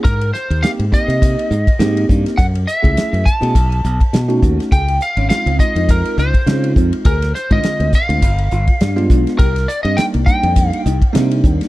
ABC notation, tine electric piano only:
X:1
M:4/4
L:1/16
Q:"Swing 16ths" 1/4=103
K:Cm
V:1 name="Tine electric piano"
z4 [B,CEG] z [B,CEG]4 z2 [B,CEG]4 | z3 [=A,^C=E_A]3 z [=A,CE_A] z4 z [=A,C^D^F]3 | z4 [A,CEF] z [A,CEF]4 z2 [A,CEF]4 | z3 [D,A,CF]3 z [A,CDF] z4 z [A,=B,DF]3 |
z4 [G,B,DE] z [G,B,DE]4 z2 [G,B,DE]4 |]